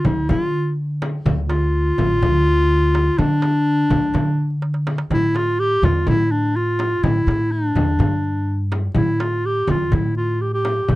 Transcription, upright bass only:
0, 0, Header, 1, 2, 480
1, 0, Start_track
1, 0, Tempo, 481155
1, 1255, Time_signature, 4, 2, 24, 8
1, 10928, End_track
2, 0, Start_track
2, 0, Title_t, "Upright bass"
2, 0, Program_c, 0, 32
2, 57, Note_on_c, 0, 38, 76
2, 270, Note_off_c, 0, 38, 0
2, 301, Note_on_c, 0, 50, 88
2, 1153, Note_off_c, 0, 50, 0
2, 1252, Note_on_c, 0, 38, 94
2, 1895, Note_off_c, 0, 38, 0
2, 1979, Note_on_c, 0, 33, 91
2, 2191, Note_off_c, 0, 33, 0
2, 2217, Note_on_c, 0, 38, 91
2, 3071, Note_off_c, 0, 38, 0
2, 3178, Note_on_c, 0, 50, 86
2, 3818, Note_off_c, 0, 50, 0
2, 3894, Note_on_c, 0, 38, 79
2, 4108, Note_off_c, 0, 38, 0
2, 4125, Note_on_c, 0, 50, 87
2, 4984, Note_off_c, 0, 50, 0
2, 5092, Note_on_c, 0, 45, 81
2, 5734, Note_off_c, 0, 45, 0
2, 5807, Note_on_c, 0, 40, 85
2, 6025, Note_off_c, 0, 40, 0
2, 6059, Note_on_c, 0, 45, 85
2, 6912, Note_off_c, 0, 45, 0
2, 7015, Note_on_c, 0, 45, 85
2, 7229, Note_off_c, 0, 45, 0
2, 7250, Note_on_c, 0, 45, 84
2, 7680, Note_off_c, 0, 45, 0
2, 7733, Note_on_c, 0, 40, 78
2, 7948, Note_off_c, 0, 40, 0
2, 7968, Note_on_c, 0, 43, 85
2, 8827, Note_off_c, 0, 43, 0
2, 8932, Note_on_c, 0, 45, 81
2, 9575, Note_off_c, 0, 45, 0
2, 9664, Note_on_c, 0, 40, 87
2, 9875, Note_off_c, 0, 40, 0
2, 9904, Note_on_c, 0, 45, 95
2, 10757, Note_off_c, 0, 45, 0
2, 10865, Note_on_c, 0, 45, 85
2, 10928, Note_off_c, 0, 45, 0
2, 10928, End_track
0, 0, End_of_file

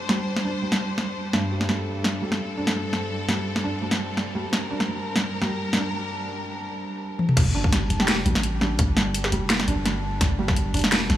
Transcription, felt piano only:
0, 0, Header, 1, 2, 480
1, 0, Start_track
1, 0, Key_signature, -2, "minor"
1, 0, Tempo, 355030
1, 362, Time_signature, 4, 2, 24, 8
1, 15105, End_track
2, 0, Start_track
2, 0, Title_t, "Felt piano"
2, 0, Program_c, 0, 0
2, 0, Control_c, 0, 64, 127
2, 0, Note_on_c, 0, 55, 76
2, 0, Note_on_c, 0, 62, 96
2, 122, Note_off_c, 0, 55, 0
2, 122, Note_on_c, 0, 55, 98
2, 268, Note_off_c, 0, 55, 0
2, 602, Note_off_c, 0, 62, 0
2, 602, Note_on_c, 0, 62, 87
2, 748, Note_off_c, 0, 62, 0
2, 840, Note_on_c, 0, 55, 69
2, 1540, Note_off_c, 0, 55, 0
2, 1802, Note_on_c, 0, 43, 87
2, 1948, Note_off_c, 0, 43, 0
2, 2041, Note_on_c, 0, 67, 72
2, 2260, Note_off_c, 0, 67, 0
2, 2282, Note_on_c, 0, 55, 74
2, 2980, Note_off_c, 0, 55, 0
2, 3001, Note_on_c, 0, 55, 88
2, 3147, Note_off_c, 0, 55, 0
2, 3482, Note_on_c, 0, 62, 95
2, 3628, Note_off_c, 0, 62, 0
2, 3721, Note_on_c, 0, 55, 70
2, 4420, Note_off_c, 0, 55, 0
2, 4441, Note_on_c, 0, 55, 90
2, 4587, Note_off_c, 0, 55, 0
2, 4920, Note_on_c, 0, 62, 97
2, 5067, Note_off_c, 0, 62, 0
2, 5162, Note_on_c, 0, 55, 72
2, 5860, Note_off_c, 0, 55, 0
2, 5881, Note_on_c, 0, 55, 95
2, 6027, Note_off_c, 0, 55, 0
2, 6363, Note_on_c, 0, 62, 93
2, 6508, Note_off_c, 0, 62, 0
2, 6602, Note_on_c, 0, 55, 69
2, 7300, Note_off_c, 0, 55, 0
2, 7322, Note_on_c, 0, 55, 99
2, 7467, Note_off_c, 0, 55, 0
2, 7801, Note_on_c, 0, 62, 96
2, 7947, Note_off_c, 0, 62, 0
2, 9983, Control_c, 0, 64, 0
2, 10204, Note_on_c, 0, 62, 99
2, 10224, Control_c, 0, 64, 127
2, 10349, Note_off_c, 0, 62, 0
2, 10446, Note_on_c, 0, 55, 75
2, 11142, Note_off_c, 0, 55, 0
2, 11164, Note_on_c, 0, 55, 102
2, 11309, Note_off_c, 0, 55, 0
2, 11644, Note_on_c, 0, 62, 104
2, 11789, Note_off_c, 0, 62, 0
2, 11885, Note_on_c, 0, 55, 79
2, 12582, Note_off_c, 0, 55, 0
2, 12603, Note_on_c, 0, 55, 105
2, 12748, Note_off_c, 0, 55, 0
2, 13084, Note_on_c, 0, 62, 104
2, 13229, Note_off_c, 0, 62, 0
2, 13324, Note_on_c, 0, 55, 75
2, 14021, Note_off_c, 0, 55, 0
2, 14045, Note_on_c, 0, 55, 101
2, 14189, Note_off_c, 0, 55, 0
2, 14524, Note_on_c, 0, 62, 103
2, 14669, Note_off_c, 0, 62, 0
2, 14763, Note_on_c, 0, 55, 83
2, 15105, Note_off_c, 0, 55, 0
2, 15105, End_track
0, 0, End_of_file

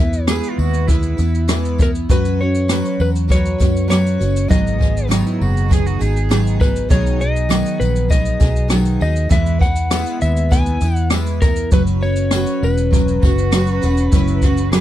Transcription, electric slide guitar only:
0, 0, Header, 1, 2, 480
1, 0, Start_track
1, 0, Tempo, 601805
1, 1671, Time_signature, 4, 2, 24, 8
1, 11809, End_track
2, 0, Start_track
2, 0, Title_t, "Electric slide guitar"
2, 0, Program_c, 0, 29
2, 0, Note_on_c, 0, 76, 78
2, 199, Note_off_c, 0, 76, 0
2, 1455, Note_on_c, 0, 70, 77
2, 1517, Note_off_c, 0, 70, 0
2, 1686, Note_on_c, 0, 71, 81
2, 1919, Note_on_c, 0, 73, 78
2, 1925, Note_off_c, 0, 71, 0
2, 2404, Note_on_c, 0, 71, 71
2, 2409, Note_off_c, 0, 73, 0
2, 2467, Note_off_c, 0, 71, 0
2, 2645, Note_on_c, 0, 73, 98
2, 3103, Note_off_c, 0, 73, 0
2, 3112, Note_on_c, 0, 73, 91
2, 3590, Note_off_c, 0, 73, 0
2, 3594, Note_on_c, 0, 75, 86
2, 4040, Note_off_c, 0, 75, 0
2, 5274, Note_on_c, 0, 71, 80
2, 5511, Note_off_c, 0, 71, 0
2, 5514, Note_on_c, 0, 73, 87
2, 5736, Note_off_c, 0, 73, 0
2, 5751, Note_on_c, 0, 75, 101
2, 6219, Note_on_c, 0, 71, 78
2, 6246, Note_off_c, 0, 75, 0
2, 6465, Note_on_c, 0, 75, 84
2, 6473, Note_off_c, 0, 71, 0
2, 6917, Note_off_c, 0, 75, 0
2, 7196, Note_on_c, 0, 75, 72
2, 7431, Note_off_c, 0, 75, 0
2, 7434, Note_on_c, 0, 76, 90
2, 7665, Note_off_c, 0, 76, 0
2, 7668, Note_on_c, 0, 78, 90
2, 8147, Note_off_c, 0, 78, 0
2, 8150, Note_on_c, 0, 76, 88
2, 8389, Note_on_c, 0, 80, 89
2, 8399, Note_off_c, 0, 76, 0
2, 8732, Note_off_c, 0, 80, 0
2, 8732, Note_on_c, 0, 78, 89
2, 8840, Note_off_c, 0, 78, 0
2, 9107, Note_on_c, 0, 70, 88
2, 9355, Note_off_c, 0, 70, 0
2, 9358, Note_on_c, 0, 71, 96
2, 9423, Note_off_c, 0, 71, 0
2, 9592, Note_on_c, 0, 73, 94
2, 10083, Note_on_c, 0, 71, 89
2, 10087, Note_off_c, 0, 73, 0
2, 11809, Note_off_c, 0, 71, 0
2, 11809, End_track
0, 0, End_of_file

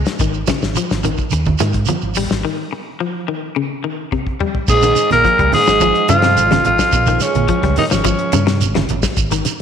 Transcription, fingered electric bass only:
0, 0, Header, 1, 3, 480
1, 0, Start_track
1, 0, Tempo, 561272
1, 166, Time_signature, 4, 2, 24, 8
1, 8224, End_track
2, 0, Start_track
2, 0, Title_t, "Fingered electric bass"
2, 0, Program_c, 0, 33
2, 172, Note_on_c, 0, 32, 88
2, 362, Note_off_c, 0, 32, 0
2, 537, Note_on_c, 0, 32, 76
2, 628, Note_off_c, 0, 32, 0
2, 779, Note_on_c, 0, 32, 77
2, 967, Note_off_c, 0, 32, 0
2, 1129, Note_on_c, 0, 39, 94
2, 1321, Note_off_c, 0, 39, 0
2, 1373, Note_on_c, 0, 44, 85
2, 1563, Note_off_c, 0, 44, 0
2, 1734, Note_on_c, 0, 32, 70
2, 1925, Note_off_c, 0, 32, 0
2, 1975, Note_on_c, 0, 32, 73
2, 2067, Note_off_c, 0, 32, 0
2, 4007, Note_on_c, 0, 34, 97
2, 4200, Note_off_c, 0, 34, 0
2, 4375, Note_on_c, 0, 34, 78
2, 4467, Note_off_c, 0, 34, 0
2, 4612, Note_on_c, 0, 37, 88
2, 4705, Note_off_c, 0, 37, 0
2, 4848, Note_on_c, 0, 32, 84
2, 5041, Note_off_c, 0, 32, 0
2, 5209, Note_on_c, 0, 43, 97
2, 5449, Note_on_c, 0, 32, 105
2, 5462, Note_off_c, 0, 43, 0
2, 5640, Note_off_c, 0, 32, 0
2, 5690, Note_on_c, 0, 32, 88
2, 5787, Note_off_c, 0, 32, 0
2, 5926, Note_on_c, 0, 34, 92
2, 6118, Note_off_c, 0, 34, 0
2, 6291, Note_on_c, 0, 34, 88
2, 6384, Note_off_c, 0, 34, 0
2, 6530, Note_on_c, 0, 37, 89
2, 6623, Note_off_c, 0, 37, 0
2, 6771, Note_on_c, 0, 32, 90
2, 6962, Note_off_c, 0, 32, 0
2, 7127, Note_on_c, 0, 43, 98
2, 7370, Note_on_c, 0, 32, 107
2, 7383, Note_off_c, 0, 43, 0
2, 7560, Note_off_c, 0, 32, 0
2, 7613, Note_on_c, 0, 32, 88
2, 7708, Note_off_c, 0, 32, 0
2, 7844, Note_on_c, 0, 32, 98
2, 8036, Note_off_c, 0, 32, 0
2, 8224, End_track
3, 0, Start_track
3, 0, Title_t, "Muted fingered electric bass strokes"
3, 7724, Note_on_c, 9, 29, 37
3, 7810, Note_off_c, 9, 29, 0
3, 8224, End_track
0, 0, End_of_file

